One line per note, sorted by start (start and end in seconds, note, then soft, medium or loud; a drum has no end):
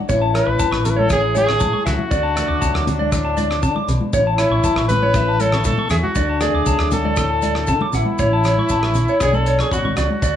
0.00 0.32 A4 medium
0.08 0.39 A1 medium
0.08 1.07 A2 medium
0.08 0.58 E3 medium
0.08 0.33 C#4 medium
0.08 0.84 E4 medium
0.08 0.20 C#5 medium
0.08 kick medium
0.08 maracas medium
0.22 0.33 A5 medium
0.34 2.08 C#4 medium
0.34 0.86 B4 medium
0.34 0.45 C#5 medium
0.34 cross-stick medium
0.34 closed hi-hat soft
0.47 0.57 A1 medium
0.47 muted clean electric guitar stroke medium
0.59 0.69 F#1 medium
0.59 2.11 E3 medium
0.59 0.71 A5 medium
0.59 kick medium
0.59 maracas medium
0.71 1.62 A1 medium
0.71 0.83 C#6 medium
0.71 cross-stick medium
0.85 1.34 E4 medium
0.85 0.91 A4 medium
0.85 closed hi-hat medium
0.85 low conga medium
0.85 maracas medium
0.90 1.00 B4 medium
0.96 1.10 A4 medium
0.96 1.08 C#5 medium
0.96 high conga medium
1.09 2.07 A2 medium
1.09 1.34 G#4 loud
1.09 1.21 C#5 medium
1.09 kick medium
1.09 cross-stick medium
1.09 maracas medium
1.22 muted clean electric guitar stroke medium
1.35 2.08 E4 medium
1.35 1.83 G#4 loud
1.35 1.46 C#5 medium
1.35 closed hi-hat soft
1.35 high conga medium
1.35 maracas medium
1.47 1.58 C#6 medium
1.47 cross-stick medium
1.47 low conga medium
1.60 1.71 A2 loud
1.60 1.71 A5 medium
1.60 muted steel-string acoustic guitar stroke medium
1.60 kick medium
1.60 maracas medium
1.73 1.84 C#6 medium
1.73 high conga medium
1.86 1.96 C#2 medium
1.86 2.11 C#3 medium
1.86 2.83 F#4 medium
1.86 1.97 E5 medium
1.86 cross-stick medium
1.86 closed hi-hat medium
1.86 low conga medium
1.86 maracas medium
1.99 high conga medium
2.11 2.41 D2 medium
2.11 3.61 D3 medium
2.11 3.36 D4 medium
2.11 2.22 D5 medium
2.11 kick medium
2.11 maracas medium
2.23 2.34 A5 medium
2.36 4.39 A3 medium
2.36 2.47 D5 medium
2.36 cross-stick medium
2.36 closed hi-hat medium
2.36 maracas medium
2.48 2.59 D2 medium
2.48 2.60 D6 medium
2.61 2.72 C#2 medium
2.61 4.10 F#3 medium
2.61 2.73 A5 medium
2.61 kick medium
2.61 maracas medium
2.74 3.64 D2 medium
2.74 2.85 D6 medium
2.74 cross-stick medium
2.87 3.84 D4 medium
2.87 4.13 F#4 medium
2.87 closed hi-hat medium
2.87 high conga medium
2.87 low conga medium
2.87 maracas medium
2.99 3.11 D5 medium
2.99 high conga medium
3.12 4.10 A2 medium
3.12 muted clean electric guitar stroke medium
3.12 kick medium
3.12 cross-stick medium
3.12 maracas medium
3.25 3.36 A5 medium
3.37 4.10 D4 medium
3.37 3.48 D5 medium
3.37 closed hi-hat soft
3.37 high conga medium
3.37 maracas medium
3.50 3.61 D6 medium
3.50 cross-stick medium
3.61 3.87 C#3 medium
3.61 3.73 D3 loud
3.61 3.74 A5 medium
3.61 kick medium
3.61 maracas medium
3.76 3.87 D6 medium
3.76 high conga medium
3.87 3.98 B1 medium
3.87 4.13 B2 medium
3.87 closed hi-hat soft
3.87 low conga medium
3.87 maracas medium
4.01 high conga medium
4.13 4.43 A1 medium
4.13 5.13 A2 medium
4.13 5.39 E4 medium
4.13 4.25 C#5 medium
4.13 kick medium
4.13 maracas medium
4.27 4.38 A5 medium
4.37 6.13 C#4 medium
4.37 4.85 E4 medium
4.37 4.50 C#5 medium
4.37 cross-stick medium
4.37 closed hi-hat soft
4.37 maracas medium
4.50 4.61 A1 medium
4.50 4.63 C#6 medium
4.64 4.74 F#1 medium
4.64 6.16 E3 medium
4.64 4.76 A5 medium
4.64 kick medium
4.64 maracas medium
4.75 5.67 A1 medium
4.75 4.88 C#6 medium
4.75 cross-stick medium
4.88 5.42 B4 loud
4.88 muted steel-string acoustic guitar stroke medium
4.88 closed hi-hat soft
4.88 high conga medium
4.88 low conga medium
4.88 maracas medium
5.02 5.14 C#5 medium
5.02 high conga medium
5.14 6.13 A2 medium
5.14 5.27 E5 medium
5.14 kick medium
5.14 cross-stick medium
5.14 maracas medium
5.28 5.39 A5 medium
5.40 6.13 E4 medium
5.40 5.65 A4 loud
5.40 5.52 C#5 medium
5.40 closed hi-hat soft
5.40 high conga medium
5.40 maracas medium
5.52 5.65 C#6 medium
5.52 cross-stick medium
5.52 low conga medium
5.64 5.75 A2 loud
5.64 5.89 B2 medium
5.64 5.89 A4 medium
5.64 5.77 A5 medium
5.64 kick medium
5.64 maracas medium
5.78 5.90 C#6 medium
5.78 high conga medium
5.89 6.00 E2 medium
5.89 6.15 C#3 medium
5.89 5.96 G#4 medium
5.89 6.02 E5 medium
5.89 cross-stick medium
5.89 closed hi-hat medium
5.89 low conga medium
5.89 maracas medium
6.03 6.42 F#4 medium
6.03 high conga medium
6.15 6.46 D2 loud
6.15 7.67 D3 medium
6.15 7.42 D4 soft
6.15 6.28 D5 medium
6.15 kick medium
6.15 maracas medium
6.29 6.40 A5 medium
6.41 8.70 A3 medium
6.41 6.92 G#4 medium
6.41 6.53 D5 medium
6.41 cross-stick medium
6.41 closed hi-hat soft
6.41 maracas medium
6.54 6.64 D2 medium
6.54 6.66 D6 medium
6.66 6.76 C#2 medium
6.66 8.15 F#3 medium
6.66 6.78 A5 medium
6.66 kick medium
6.66 maracas medium
6.79 7.70 D2 medium
6.79 6.91 D6 medium
6.79 cross-stick medium
6.91 8.18 F#4 medium
6.91 7.90 A4 medium
6.91 closed hi-hat medium
6.91 high conga medium
6.91 low conga medium
6.91 maracas medium
7.05 7.16 D5 medium
7.05 high conga medium
7.16 8.16 A2 medium
7.16 7.29 A4 medium
7.16 kick medium
7.16 cross-stick medium
7.16 maracas medium
7.30 7.41 A5 medium
7.42 7.54 D5 medium
7.42 closed hi-hat soft
7.42 high conga medium
7.42 maracas medium
7.55 muted clean electric guitar stroke medium
7.55 cross-stick medium
7.67 7.93 C#3 medium
7.67 7.78 D3 medium
7.67 7.80 A5 medium
7.67 kick medium
7.67 maracas medium
7.81 7.93 D6 medium
7.81 high conga medium
7.93 8.04 A1 medium
7.93 8.19 B2 medium
7.93 9.18 E4 medium
7.93 8.05 F#5 medium
7.93 closed hi-hat soft
7.93 low conga medium
7.93 maracas medium
8.05 high conga medium
8.18 8.59 A1 loud
8.18 9.17 A2 medium
8.18 8.31 C#5 medium
8.18 kick medium
8.18 maracas medium
8.33 8.44 A5 medium
8.44 8.56 C#5 medium
8.44 cross-stick medium
8.44 closed hi-hat soft
8.44 maracas medium
8.57 8.69 C#6 medium
8.57 high conga medium
8.69 8.95 A1 medium
8.69 9.20 E3 medium
8.69 9.18 C#4 medium
8.69 8.82 A5 medium
8.69 kick medium
8.69 maracas loud
8.83 8.95 C#6 medium
8.83 cross-stick medium
8.94 9.05 A#1 medium
8.94 closed hi-hat soft
8.94 low conga medium
8.94 maracas medium
9.08 9.20 C#5 medium
9.08 maracas soft
9.20 9.61 B1 medium
9.20 9.70 B2 medium
9.20 10.19 F#3 medium
9.20 9.46 C#4 medium
9.20 10.20 D4 medium
9.20 9.36 G#4 medium
9.20 9.33 C#5 medium
9.20 muted steel-string acoustic guitar stroke medium
9.20 kick medium
9.20 cross-stick medium
9.20 maracas medium
9.33 9.59 A4 medium
9.33 9.45 B5 medium
9.33 high conga medium
9.33 maracas soft
9.46 10.20 C#4 soft
9.46 9.58 C#5 medium
9.46 closed hi-hat soft
9.46 maracas medium
9.59 9.71 G#4 medium
9.59 9.71 C#6 medium
9.59 cross-stick medium
9.59 maracas soft
9.71 9.91 G#1 medium
9.71 9.95 B2 medium
9.71 9.96 F#4 medium
9.71 9.83 B5 medium
9.71 kick medium
9.71 maracas medium
9.85 9.96 C#6 medium
9.85 high conga medium
9.85 low conga medium
9.96 10.07 C#2 medium
9.96 10.21 C#3 medium
9.96 10.36 F#4 medium
9.96 10.09 D5 medium
9.96 cross-stick medium
9.96 closed hi-hat soft
9.96 low conga medium
9.96 maracas medium
10.11 high conga medium
10.22 10.36 D2 loud
10.22 10.36 D3 medium
10.22 10.34 D5 medium
10.22 kick medium
10.22 maracas medium